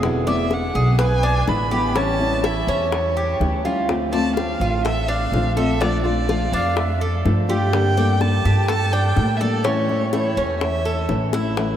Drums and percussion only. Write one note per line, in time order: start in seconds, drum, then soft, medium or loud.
0.03 high bongo medium
0.27 high bongo soft
0.51 high bongo medium
0.75 high bongo soft
0.99 high bongo medium
1.48 high bongo soft
1.48 low bongo medium
1.72 high bongo soft
1.96 high bongo medium
2.21 high bongo soft
2.44 high bongo medium
2.68 high bongo soft
2.92 high bongo medium
3.41 high bongo soft
3.41 low bongo medium
3.65 high bongo soft
3.89 high bongo medium
4.14 high bongo soft
4.37 high bongo medium
4.61 high bongo soft
4.86 high bongo medium
5.33 high bongo soft
5.33 low bongo medium
5.57 high bongo soft
5.82 high bongo medium
6.06 high bongo soft
6.29 high bongo medium
6.53 high bongo soft
6.77 high bongo medium
7.26 high bongo soft
7.26 low bongo medium
7.50 high bongo soft
7.73 high bongo medium
7.97 high bongo soft
8.21 high bongo medium
8.45 high bongo soft
8.68 high bongo medium
9.16 high bongo soft
9.16 low bongo medium
9.41 high bongo soft
9.65 high bongo medium
9.89 high bongo soft
10.13 high bongo medium
10.38 high bongo soft
10.61 high bongo medium
11.09 high bongo soft
11.09 low bongo medium
11.33 high bongo medium
11.57 high bongo medium